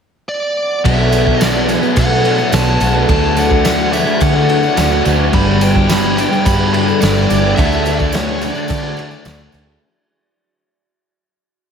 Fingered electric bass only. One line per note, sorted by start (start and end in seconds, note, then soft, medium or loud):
0.86 1.77 B1 medium
1.97 2.43 B2 medium
2.53 2.76 B1 medium
2.81 3.04 B1 medium
3.09 4.01 D2 medium
4.22 4.67 D3 medium
4.77 5.00 D2 medium
5.06 5.29 D2 medium
5.34 6.25 G1 medium
6.46 6.92 G2 medium
7.03 7.25 G1 medium
7.31 7.53 G1 medium
7.58 8.49 D2 medium
8.70 9.15 D3 medium
9.25 9.48 D2 medium
9.53 9.76 D2 medium